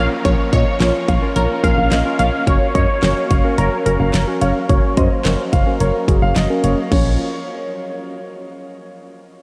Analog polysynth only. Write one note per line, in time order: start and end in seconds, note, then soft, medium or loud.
0.25 0.52 C#5 loud
0.53 1.32 C#5 loud
1.36 1.65 A#4 loud
1.64 2.18 F5 loud
2.19 2.45 F5 loud
2.47 2.73 C#5 loud
2.75 3.54 C#5 loud
3.58 3.84 A#4 medium
3.86 4.43 A#4 medium
4.41 4.70 F5 loud
4.69 4.95 C#5 loud
4.97 5.76 C5 loud
5.81 6.32 A#4 medium